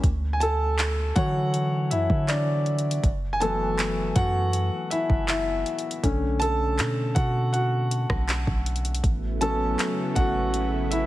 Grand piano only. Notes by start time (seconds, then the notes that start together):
0.33 G#5
0.40 A4 A5
1.16 E3 F#3 F#4 C#5 F#5
1.91 E4 E5
2.28 D4 D5
3.33 G#5
3.40 E3 F#3 A3 B3 A4 A5
4.16 F#4 F#5
4.90 E4 E5
5.28 E4 E5
6.03 D3 A3 C#4
6.40 A4 A5
7.15 F#4 F#5
7.53 F#4 F#5
9.41 F#3 B3 C#4 A4 A5
10.15 F#4 F#5
10.91 E4 E5